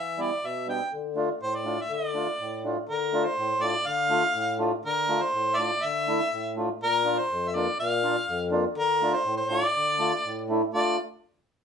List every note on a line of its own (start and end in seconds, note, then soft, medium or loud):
0.00 0.30 E3 medium
0.00 0.24 E5 medium
0.17 0.30 G3 medium
0.17 0.31 B3 medium
0.17 0.31 E4 medium
0.22 0.48 D5 medium
0.43 0.80 B2 medium
0.43 0.69 E5 medium
0.67 0.80 G3 medium
0.67 0.80 B3 medium
0.67 0.80 D4 medium
0.67 0.91 G5 medium
0.92 1.29 D3 medium
1.15 1.28 A3 medium
1.15 1.29 D4 medium
1.15 1.29 F4 medium
1.41 1.78 A2 medium
1.41 1.57 C5 medium
1.56 1.83 D5 medium
1.64 1.77 A3 medium
1.64 1.78 D4 medium
1.64 1.78 F4 medium
1.82 1.95 E5 loud
1.89 2.26 D3 medium
1.93 2.66 D5 loud
2.14 2.27 A3 medium
2.14 2.27 D4 medium
2.14 2.28 F4 medium
2.39 2.76 A2 medium
2.64 2.77 A3 medium
2.64 2.77 D4 medium
2.64 2.77 F4 medium
2.89 3.26 D3 medium
2.89 3.26 A#4 medium
3.13 3.25 A3 medium
3.13 3.26 D4 medium
3.13 3.26 F4 medium
3.25 3.64 C5 loud
3.38 3.74 A2 medium
3.61 3.74 A3 medium
3.61 3.75 D4 medium
3.61 3.75 F4 medium
3.61 3.88 D5 loud
3.86 4.23 D3 medium
3.86 4.60 F5 loud
4.09 4.23 A3 medium
4.09 4.23 D4 medium
4.09 4.23 F4 medium
4.34 4.71 A2 medium
4.59 4.72 A3 medium
4.59 4.72 D4 medium
4.59 4.72 F4 medium
4.84 5.21 D3 medium
4.84 5.24 A#4 medium
5.08 5.21 A3 medium
5.08 5.21 D4 medium
5.08 5.22 F4 medium
5.22 5.55 C5 medium
5.33 5.70 A2 medium
5.53 5.83 D5 loud
5.53 5.58 E5 medium
5.58 5.71 A3 medium
5.58 5.71 D4 medium
5.58 5.71 F4 medium
5.81 6.19 D3 medium
5.81 6.56 E5 loud
6.08 6.20 A3 medium
6.08 6.20 D4 medium
6.08 6.20 E4 medium
6.32 6.69 A2 medium
6.56 6.69 A3 medium
6.56 6.69 D4 medium
6.56 6.69 F4 medium
6.81 7.18 A#2 medium
6.81 7.20 A#4 loud
7.04 7.17 A#3 medium
7.04 7.18 D4 medium
7.04 7.18 F4 medium
7.19 7.50 C5 medium
7.31 7.67 F2 medium
7.48 7.57 E5 medium
7.55 7.67 A#3 medium
7.55 7.67 D4 medium
7.55 7.68 F4 medium
7.55 7.79 D5 medium
7.79 8.16 A#2 medium
7.79 8.49 F5 loud
8.03 8.16 A#3 medium
8.03 8.16 D4 medium
8.03 8.16 F4 medium
8.28 8.65 F2 medium
8.51 8.64 A#3 medium
8.51 8.64 D4 medium
8.51 8.65 F4 loud
8.75 9.13 D3 medium
8.75 9.15 A#4 loud
9.01 9.14 A3 medium
9.01 9.15 D4 medium
9.01 9.15 F4 loud
9.14 9.37 C5 medium
9.25 9.62 A2 medium
9.37 9.51 C5 medium
9.50 9.63 A3 medium
9.50 9.63 D4 medium
9.50 9.63 F4 medium
9.50 10.49 D5 loud
9.75 10.12 D3 medium
9.99 10.12 A3 medium
9.99 10.12 D4 medium
9.99 10.13 F4 medium
10.24 10.61 A2 medium
10.49 10.62 A3 medium
10.49 10.62 D4 medium
10.49 10.62 E4 medium
10.73 10.97 A3 medium
10.73 10.97 D4 medium
10.73 10.97 F4 medium
10.73 10.97 D5 medium